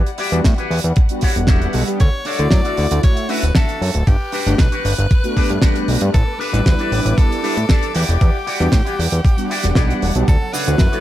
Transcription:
Already playing: G3 F#5
0.06 closed hi-hat
0.18 E4 F#4 G4 D5, open hi-hat
0.32 E2 G3 B3 D4 F#4, closed hi-hat
0.44 A2, kick, snare, closed hi-hat
0.58 E4 F#4 G4 B4, closed hi-hat
0.71 E2, open hi-hat
0.84 E2, closed hi-hat
0.96 muted clean electric guitar stroke, kick, closed hi-hat
1.09 G3 B3 D4 F#4, closed hi-hat
1.21 E4 F#4 G4 C#5, kick, open hi-hat
1.36 E1 G3 B3 D4 F#5, closed hi-hat
1.47 E4 F#4 G4 A4, kick, snare, closed hi-hat
1.62 closed hi-hat
1.73 B1, open hi-hat
1.87 G3 B3 D4 G4, closed hi-hat
2.00 D2 C#5 F#5, kick, closed hi-hat
2.25 D4 F#4 A4 C#5 D5, open hi-hat
2.38 D2 A3 E4 F#4, closed hi-hat
2.51 F#2, kick, snare, closed hi-hat
2.65 D4 F#4 A4 D5, closed hi-hat
2.77 D2, open hi-hat
2.91 D2, closed hi-hat
3.03 C#5, muted clean electric guitar stroke, kick, closed hi-hat
3.17 closed hi-hat
3.29 A3 C#4 D4 E4 F#4 A4 B4 E5, open hi-hat
3.43 D1, closed hi-hat
3.55 D4 F#4 A4 E5, kick, snare, closed hi-hat
3.69 closed hi-hat
3.82 F#2, open hi-hat
3.94 D1, closed hi-hat
4.07 G1 G4 B4 F#6, kick, closed hi-hat
4.32 D4 F#4 G4 B4, open hi-hat
4.46 G1 A3 B3 D4 F#4, closed hi-hat
4.58 B1 B4, kick, snare, closed hi-hat
4.72 D4 F#4 G4 B4, closed hi-hat
4.85 G1, open hi-hat
4.98 G1, closed hi-hat
5.10 muted clean electric guitar stroke, kick, closed hi-hat
5.24 A3 B3 D4 F#4, closed hi-hat
5.36 G3 A3 B3 D4 F#4 G4 B4, kick, open hi-hat
5.50 G2, closed hi-hat
5.62 D4 F#4 G4 B4, kick, snare, closed hi-hat
5.75 closed hi-hat
5.88 B1, open hi-hat
6.01 G2, closed hi-hat
6.14 A1 A4 D6, kick, closed hi-hat
6.39 D4 G4 A4 B4, open hi-hat
6.52 A1 G3 B3 D4 E4, closed hi-hat
6.66 D2, kick, snare, closed hi-hat
6.79 D4 G4 A4 D5, closed hi-hat
6.92 A1, open hi-hat
7.05 A1, closed hi-hat
7.17 A4, muted clean electric guitar stroke, kick, closed hi-hat
7.32 closed hi-hat
7.43 G3 B3 D4 E4 G4 A4 B4, open hi-hat
7.57 A2, closed hi-hat
7.69 D4 G4 A4 D5, kick, snare, closed hi-hat
7.83 closed hi-hat
7.94 E2 G3 E4 F#4 G4 D5 F#5, open hi-hat
8.09 E1, closed hi-hat
8.21 E2, kick, closed hi-hat
8.47 E4 F#4 G4 D5, open hi-hat
8.60 E2 G3 B3 D4 F#4, closed hi-hat
8.72 A2, kick, snare, closed hi-hat
8.85 E4 F#4 G4 D5, closed hi-hat
8.99 E2, open hi-hat
9.12 E2, closed hi-hat
9.24 muted clean electric guitar stroke, kick, closed hi-hat
9.37 G3 B3 D4 F#4, closed hi-hat
9.50 E4 F#4 G4 D5, open hi-hat
9.63 E1 G3 B3 D4 F#5, snare, closed hi-hat
9.75 B1 E4 F#4 G4 D5, kick, snare, closed hi-hat
9.90 closed hi-hat
10.02 E1, open hi-hat
10.15 B1 G3 B3 D4 G4, closed hi-hat
10.28 D2 C#3 A4 C#5, kick, closed hi-hat, cabasa
10.42 F#3
10.53 C#3 D4 F#4 A4 B4 C#5, open hi-hat, cabasa
10.66 D2 A3 E4 F#4 C#5, closed hi-hat, cabasa
10.78 F#2 C#3, kick, snare, closed hi-hat, cabasa
10.92 F#3 D4 F#4 A4 C#5, closed hi-hat

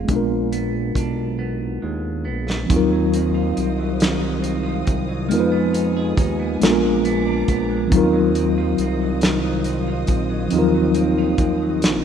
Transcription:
Already playing: A#3 F4 G#4
0.05 A#2 G#3 B3, kick, closed hi-hat
0.09 A#1 D4
0.13 F4 A#4
0.52 B3, closed hi-hat
0.95 B1 D4, kick, closed hi-hat
1.39 B3
1.82 D#2 G#3
2.25 A#1 B3
2.50 snare
2.66 F3 C4 C5, kick
2.70 D#2 D#3 F#3 D#4 F4 D#5 F5 D#6, closed hi-hat
2.76 A#4
2.92 F#3
3.14 C4, closed hi-hat
3.34 F4
3.57 C2 C4, closed hi-hat
3.79 F#3
4.00 D#3, snare, closed hi-hat
4.21 F#3
4.42 C4, closed hi-hat
4.63 F4
4.85 C2 C4, kick, closed hi-hat
5.08 F#3
5.28 F2 F3 G#3 B3 D#4 F4 G#4 G#5, closed hi-hat
5.34 A#4
5.40 B4
5.52 B3
5.73 D#4, closed hi-hat
5.97 G#4
6.17 D#2 D#4, kick, closed hi-hat
6.39 B3
6.60 A#1 A#2 G#3 B3 D4 F4 A#5 D6, snare, closed hi-hat
6.65 A4
6.71 A#4
6.82 G#3
7.05 B3, closed hi-hat
7.27 D4
7.48 A#1 B3, kick, closed hi-hat
7.69 G#3
7.87 F3 C4
7.91 D#2 D#3 F#3 D#4 F4 C5 D#5 F5 D#6, kick, closed hi-hat
7.97 A#4
8.13 F#3
8.35 C4, closed hi-hat
8.58 F4
8.78 C2 C4, closed hi-hat
9.02 F#3
9.21 D#3, snare, closed hi-hat
9.44 F#3
9.64 C4, closed hi-hat
9.88 F4
10.07 A#1 C4, kick, closed hi-hat
10.30 F#3
10.48 F3 C4, closed hi-hat
10.52 D#2 D#3 F#3 D#4 F4
10.59 A#4
10.75 F#3
10.94 C4, closed hi-hat
11.18 F4
11.38 D#2 C4, kick, closed hi-hat
11.62 F#3
11.82 A#1 D#3, snare, closed hi-hat

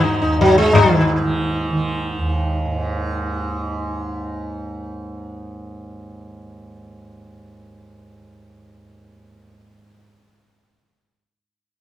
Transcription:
Already playing: D#2 G#2 D#3
0.04 D#4
0.22 D#2 D#4
0.39 F#3, tabla tin, tabla ge
0.56 G#3, tabla te
0.73 G#2 D#3, tabla na, tabla ge
1.22 D#3
1.70 D#3
2.18 D#2
2.65 G#2

